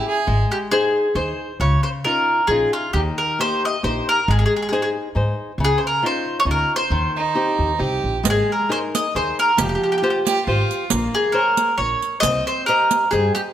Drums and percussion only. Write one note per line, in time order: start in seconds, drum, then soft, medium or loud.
8.25 riq medium
8.95 riq medium
9.39 riq soft
9.58 riq medium
10.27 riq medium
10.71 riq soft
10.90 riq medium
11.57 riq soft
12.02 riq soft
12.23 riq medium
12.47 riq soft
12.68 riq soft
12.91 riq soft
13.12 riq soft
13.36 riq soft